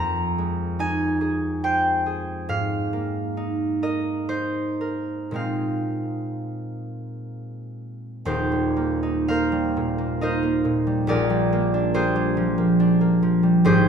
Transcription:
harp
Already playing: F2 C4 D#4 C5 A#5 C6
0.38 G#3
0.79 D#4 G#5
1.21 G#4
1.64 C5 G5
2.06 G#4
2.49 G#2 F5
2.93 A#3
3.37 D#4
3.83 A#4 D#5
4.29 D#4 C5
4.81 A#4
5.31 A#2 G#3 C4 D#4
5.36 F5
8.25 D#1 D#2 D#4 G4 C5
8.52 G3
8.77 A#3
9.03 D#4
9.28 A#3 A#4 C5 F5
9.52 G3
9.77 A#2
9.98 A#3
10.21 D#4 A#4 C5 D#5
10.43 A#3
10.65 A#2
10.87 G3
11.07 A#1 A#2 G#4 A#4 D5
11.30 G3
11.53 A#3
11.74 D4
11.94 A#3 G4 G#4 C5
12.16 G3
12.37 F3
12.58 A#3
12.80 D4
13.01 A#3
13.23 F3
13.43 G3
13.64 G#1 G#2 G4 G#4 C5

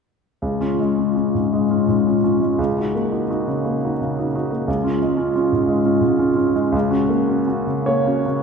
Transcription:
grand piano
0.42 C#2
0.61 C#4 F4
0.80 G#3
0.99 C#4 F4
1.16 C#4 F4
1.35 G#2
1.53 G#3
1.70 C#4 F4
1.88 G#2
2.07 C#4 F4
2.24 C#4 F4
2.41 G#3
2.59 C#2
2.78 D#4 F#4
2.95 A#3
3.12 D#4 F#4
3.30 D#4 F#4
3.47 C#3
3.65 A#3
3.84 D#4 F#4
4.01 C#3
4.19 D#4 F#4
4.35 D#4 F#4
4.51 A#3
4.68 C#2
4.84 C#4 F4
5.02 G#3
5.17 C#4 F4
5.36 C#4 F4
5.52 G#2
5.68 G#3
5.85 C#4 F4
6.01 G#2
6.19 C#4 F4
6.36 C#4 F4
6.55 G#3
6.72 C#2
6.91 C#4 F#4
7.09 A#3
7.28 C#4 F#4
7.47 C#4 F#4
7.67 C#3
7.86 A#3 C#5
8.06 C#4 F#4
8.26 C#3

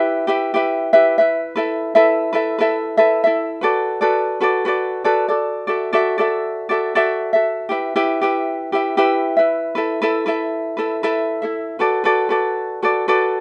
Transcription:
ukulele
Already playing: E4 G4 B4 E5
0.27 E4 G4 B4 E5
0.54 E4 G4 B4 E5
0.93 E4 G4 B4 E5
1.18 E4 B4 E5
1.56 E4 A4 B4 E5
1.95 E4 A4 B4 E5
2.33 E4 A4 B4 E5
2.58 E4 A4 B4 E5
2.97 E4 A4 B4 E5
3.24 E4 A4 E5
3.61 F#4 A4 B4 D5
4.01 F#4 A4 B4 D5
4.41 F#4 A4 B4 D5
4.65 F#4 A4 B4 D5
5.04 F#4 A4 B4 D5
5.29 F#4 A4 D5
5.67 F#4 A4 D5 E5
5.93 F#4 A4 D5 E5
6.18 F#4 A4 D5 E5
6.69 F#4 A4 D5 E5
6.95 F#4 A4 D5 E5
7.33 F#4 A4 E5
7.69 E4 G4 B4 E5
7.96 E4 G4 B4 E5
8.22 E4 G4 B4 E5
8.72 E4 G4 B4 E5
8.97 E4 G4 B4 E5
9.37 E4 B4 E5
9.75 E4 A4 B4 E5
10.02 E4 A4 B4 E5
10.26 E4 A4 B4 E5
10.77 E4 A4 B4 E5
11.03 E4 A4 B4 E5
11.42 E4 A4 E5
11.79 F#4 A4 B4 D5
12.04 F#4 A4 B4 D5
12.29 F#4 A4 B4 D5
12.82 F#4 A4 B4 D5
13.08 F#4 A4 B4 D5

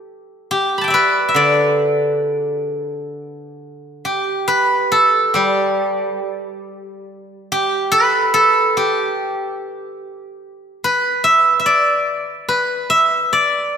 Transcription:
guzheng
Already playing: G4 A4
0.51 G4
0.78 A5 B5
0.84 E5 G5
0.90 B4 D5
1.29 E5
1.34 D3 D5
4.05 G4
4.48 B4
4.92 A4
5.34 G3 G4
7.52 G4
7.92 B4
8.34 A4
8.77 G4
10.84 B4
11.24 E5
11.60 E5
11.66 D5
12.48 B4
12.90 E5
13.33 D5

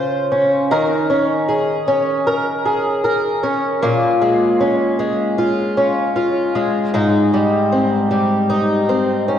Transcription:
twelve-string acoustic guitar
Already playing: C#3 C#4 F4 C5
0.31 C#4
0.71 D#3 A#4
1.10 C#4
1.48 G#4
1.88 C#4
2.27 A#4
2.66 G#4
3.04 A#4
3.43 C#4
3.82 A#2 F4
4.21 G#3
4.60 C#4
4.99 G#3
5.39 F4
5.77 C#4
6.16 F4
6.55 G#3
6.94 G#2 D#4
7.33 G3
7.72 C4
8.11 G3
8.50 D#4
8.89 C4
9.28 C#4

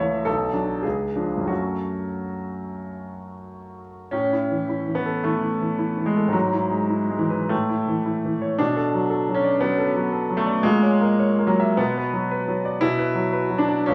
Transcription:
grand piano
Already playing: C#2 A3 E5
0.00 E3 E4 C#5
0.25 B1 A4
0.53 F#3 D4
0.82 C#2 G#4
1.15 F3 D4
1.37 F#2
1.45 F#3 A3 C#4 F#4
4.11 A2 C#4
4.33 E4
4.51 E3
4.69 E4
4.88 E3
4.95 B3
5.06 A4
5.24 E3 A3
5.43 E4
5.62 E3
5.79 E4
5.97 E3
6.06 G#3
6.17 A4
6.28 G#2
6.32 F#3
6.53 E4
6.71 G#3
6.90 E4
7.10 G#3
7.19 E3
7.30 B4
7.49 A2 A3
7.69 E4
7.88 E3
8.06 E4
8.25 E3
8.42 C#5
8.59 B2 D4
8.76 A4
8.94 F#3
9.10 A4
9.28 F#3
9.34 C#4
9.44 D5
9.60 F#3 B3
9.78 A4
9.96 F#3
10.12 A4
10.30 F#3
10.37 A3
10.46 D5
10.63 A#2 G#3
10.83 C#5
11.01 A#3
11.19 C#5
11.38 A#3
11.47 F#3
11.60 E5
11.77 B2 B3
11.98 B4
12.13 F#3
12.31 B4
12.48 F#3
12.65 D5
12.81 B2 E4
12.99 B4
13.15 F#3
13.33 B4
13.50 F#3
13.58 D4
13.69 D5
13.86 C#2 C#4

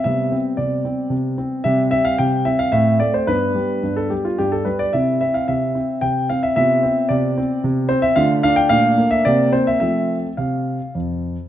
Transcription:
grand piano
0.04 C3 G3 B3 E5
0.32 C4
0.57 C3 D5
0.85 C4
1.10 C3
1.38 C4
1.64 C3 G3 C4 E5
1.91 C4 E5
2.05 F5
2.18 C3 G5
2.45 C4 E5
2.59 F5
2.72 A2 A3 C4 E5
3.00 A3 D5
3.14 C5
3.27 G2 B3 D4 B4
3.55 G3
3.83 G2
3.96 A4
4.10 G3 G4
4.25 F4
4.38 G2 G4
4.52 A4
4.65 G3 B4
4.79 D5
4.93 C3 C4 E4 E5
5.21 C4 E5
5.34 F5
5.48 C3 E5
5.75 C4
6.01 C3 G5
6.29 C4 F5
6.43 E5
6.56 C3 B3 F4 E5
6.83 C4
7.09 C3 D5
7.37 C4
7.64 C3
7.89 C4 C5
8.02 E5
8.16 D3 A3 F4 F5
8.43 D4 F5
8.56 G5
8.69 A#2 A3 D4 F5
8.98 A#3
9.11 E5
9.25 C3 A#3 C4 D5
9.53 C4 C5
9.67 E5
9.80 F3 A3 C4 E5
10.37 C3 F5
10.95 F2

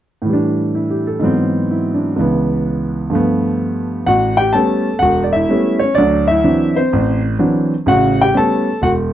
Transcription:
grand piano
0.22 A2 E3
0.29 G3
0.33 D4
0.75 E4
0.90 G4
1.07 A4
1.20 G#2 E3 F#3
1.24 B3 C4
1.71 E4
1.94 D4
2.16 C#2 C#3 E3
2.20 B3
3.10 G2 F3 A3
3.15 B3
4.06 A1 F#4 F#5
4.37 G4 G5
4.53 G3 A3 B3 C#4 A4 A5
4.99 E1 F#4 F#5
5.24 D5
5.33 E4 E5
5.49 G3 A3 B3 C#4
5.79 C#5
5.84 C#4
5.95 D2 F#3 D4 D5
6.28 E4 E5
6.44 E3 F#3 C4 D4
6.76 C4 C5
6.93 A1
7.39 E3 F#3 C4 D4
7.86 A1 C#3 F#4 F#5
8.21 G4 G5
8.34 G3 A3 B3 C#4 A5
8.38 A4
8.82 E1 F#4 F#5

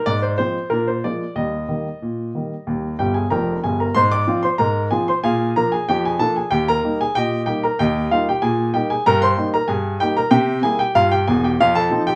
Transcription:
grand piano
0.06 G#2 D5
0.22 C5
0.38 F3 G#3 C4 C5
0.70 A#2 D4 A#4
0.87 C5
1.04 F3 G#3 A#3 D5
1.36 D#2 G3 D#5
1.68 D#3 G3 A#3
2.02 A#2
2.35 D#3 G3 A#3
2.67 D#2 G3
2.99 G1 G2 G4 G5
3.14 G#4 G#5
3.30 F1 F2 A#4 G5 A#5
3.63 G1 G2 G#4 G#5
3.80 A#4 A#5
3.95 G#2 C5 C6
4.12 D5 D6
4.27 F3 C4 F4
4.43 C5 C6
4.58 G#2 A#4 A#5
4.91 F3 C4 F4 G#4 G#5
5.08 C5 C6
5.24 A#2 G#4 F5 G#5
5.56 F3 A#3 D4 A#4 A#5
5.72 G#4 G#5
5.89 F2 G4 G5
6.05 G#4 G#5
6.19 F3 A#3 D4 A4 A5
6.36 G#4 G#5
6.51 D#2 G4 G5
6.68 A#4 A#5
6.84 G3 A#3 D#4
7.01 G#4 G#5
7.15 A#2 G4 D#5 G5
7.46 G3 A#3 D#4 G4 G5
7.63 A#4 A#5
7.79 D#2 G4 D#5 G5
8.11 G3 A#3 D#4 F4 F5
8.29 G4 G5
8.42 A#2 G#4 G#5
8.74 G3 A#3 D#4 G4 G5
8.90 G#4 G#5
9.06 G2 A#4 A#5
9.22 C5 C6
9.37 G3 A#3 D#4
9.54 A#4 A#5
9.68 G2 G#4 G#5
10.00 G3 A#3 D#4 G4 G5
10.17 A#4 A#5
10.31 C3 G4 E5 G5
10.63 G3 A#3 E4 G#4 G#5
10.79 G4 G5
10.95 G2 F4 F5
11.12 G4 G5
11.28 E1 E2 G#4 G#5
11.44 G4 G5
11.60 F2 F4 F5
11.75 A4 A5
11.91 F3 C4 D#4
12.07 G4 G5

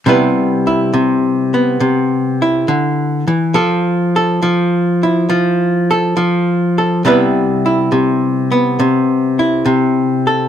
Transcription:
hollow-body jazz guitar
0.06 C3 G3 B3 E4 B4
0.67 E4
0.94 C3
1.54 B3
1.80 C3
2.42 E4
2.68 D3
3.27 E3
3.54 F3 A4
4.16 A4
4.42 F3
5.03 E4
5.29 F3
5.91 A4
6.17 F3
6.78 A4
7.05 C3 G3 B3 E4 B4
7.66 E4
7.92 C3
8.52 B3
8.80 C3
9.39 E4
9.66 C3
10.27 A4

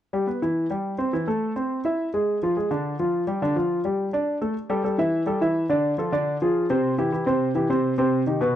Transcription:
grand piano
0.13 G3 G4
0.27 B3 B4
0.42 E3 E4
0.70 G3 G4
0.98 C4 C5
1.13 E3 E4
1.27 A3 A4
1.56 C4 C5
1.85 E4 E5
2.14 G#3 G#4
2.43 F3 F4
2.57 G#3 G#4
2.71 D3 D4
2.99 F3 F4
3.27 G3 G4
3.42 D3 D4
3.56 F3 F4
3.85 G3 G4
4.13 D4 D5
4.42 A3 A4
4.70 G3 G4 A4
4.84 G3 G4 A4
4.98 E3 E4 E5
5.26 G3 G4 A4
5.41 E3 E4 E5
5.69 D3 D4 D5
5.98 F3 F4 A4
6.12 D3 D4 D5
6.42 F3 F4 G#4
6.70 C3 C4 C5
6.98 E3 E4 G4
7.12 E3 E4 G4
7.26 C3 C4 C5
7.55 E3 E4 G4
7.70 C3 C4 C5
7.98 C3 C4 C5
8.27 D#3 D#4 G4
8.41 B2 B3 B4

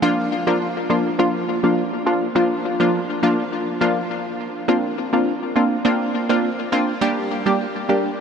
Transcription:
synth stab
0.02 F3 A#3 D4 F4
0.47 F3 A#3 D4 F4
0.90 F3 A#3 D4 F4
1.19 F3 A#3 D4 F4
1.63 F3 A#3 D4 F4
2.06 F3 A#3 D4 F4
2.35 F3 A#3 D4 F4
2.80 F3 A#3 D4 F4
3.23 F3 A#3 D4 F4
3.81 F3 A#3 D4 F4
4.68 A#3 C4 D4 F4
5.13 A#3 C4 D4 F4
5.56 A#3 C4 D4 F4
5.85 A#3 C4 D4 F4
6.29 A#3 C4 D4 F4
6.72 A#3 C4 D4 F4
7.01 G3 A#3 D4 G4
7.46 G3 A#3 D4 G4
7.89 G3 A#3 D4 G4

